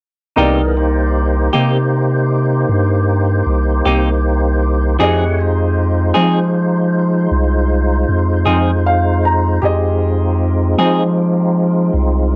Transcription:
0.36 sub bass C2, clean electric guitar C3 A#3 D#4 G4, tonewheel organ E3 B3 G#4 A#4, upright piano D#4 A#4 D5
0.77 tonewheel organ A#3 D#4 G4 C5
1.53 sub bass C3, clean electric guitar C3 A#3 D#4 G4
2.69 sub bass G2
3.47 sub bass C2
3.86 sub bass C2, clean electric guitar C3 A#3 D#4 G4
4.99 sub bass F2, clean electric guitar F3 C4 D#4 G#4, tonewheel organ A3 E4 C#5 F#5, upright piano G4 G#4 D#5
5.40 tonewheel organ G#3 D#4 F4 C5
6.14 clean electric guitar F3 C4 D#4 G#4, sub bass F3
7.32 sub bass C2
8.09 sub bass F2
8.46 sub bass F2, clean electric guitar F3 C4 D#4 G#4
8.86 upright piano F5
9.25 upright piano A#5
9.62 sub bass F2, tonewheel organ G#3 C4 D#4 F4, upright piano G4 G#4 D#5
10.78 sub bass F3, clean electric guitar F3 C4 D#4 G#4
11.94 sub bass C2

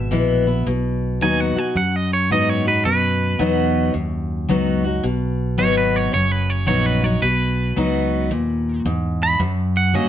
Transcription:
Already playing: fingered electric bass G#1, steel-string acoustic guitar B2, clean electric guitar E5
0.11 fingered electric bass A#1, steel-string acoustic guitar E3 G#3 B3 E4
0.47 steel-string acoustic guitar B3 E4
0.66 fingered electric bass B1, steel-string acoustic guitar B2
1.21 fingered electric bass D#2, steel-string acoustic guitar F#3 B3 D#4 F#4, clean electric guitar G#5
1.40 clean electric guitar F#5
1.56 steel-string acoustic guitar D#4 F#4, clean electric guitar G#5
1.75 fingered electric bass F#2, steel-string acoustic guitar F#2, clean electric guitar F#5
1.96 clean electric guitar D#5
2.13 clean electric guitar C#5
2.30 fingered electric bass G#2, steel-string acoustic guitar F#3 B3 D#4 F#4, clean electric guitar D#5
2.49 clean electric guitar C#5
2.65 steel-string acoustic guitar D#4 F#4, clean electric guitar B4
2.85 fingered electric bass F#2, steel-string acoustic guitar B2, clean electric guitar B4
3.39 fingered electric bass E2, steel-string acoustic guitar F#3 B3 D#4 F#4
3.94 fingered electric bass D#2, steel-string acoustic guitar F#2
4.49 fingered electric bass C#2, steel-string acoustic guitar F#3 B3 D#4 F#4
4.84 steel-string acoustic guitar D#4 F#4
5.03 fingered electric bass B1, steel-string acoustic guitar B2
5.58 fingered electric bass G#1, steel-string acoustic guitar F#3 B3 D#4 F#4, clean electric guitar C#5
5.78 clean electric guitar B4
5.96 clean electric guitar C#5
6.13 fingered electric bass F#1, steel-string acoustic guitar F#2, clean electric guitar C#5
6.32 clean electric guitar B4
6.50 clean electric guitar C#5
6.66 fingered electric bass A#1, steel-string acoustic guitar F#3 B3 D#4 F#4, clean electric guitar C#5
6.86 clean electric guitar B4
7.02 steel-string acoustic guitar D#4 F#4, clean electric guitar C#5
7.22 fingered electric bass B1, steel-string acoustic guitar B2, clean electric guitar B4
7.76 fingered electric bass C#2, steel-string acoustic guitar F#3 B3 D#4 F#4
8.31 fingered electric bass D#2, steel-string acoustic guitar A#2
8.85 fingered electric bass E2, steel-string acoustic guitar G#2
9.23 clean electric guitar B5
9.40 fingered electric bass F#2, steel-string acoustic guitar F#2
9.77 clean electric guitar F#5
9.94 fingered electric bass G2, steel-string acoustic guitar F#3 A#3 C#4 F#4, clean electric guitar D#5

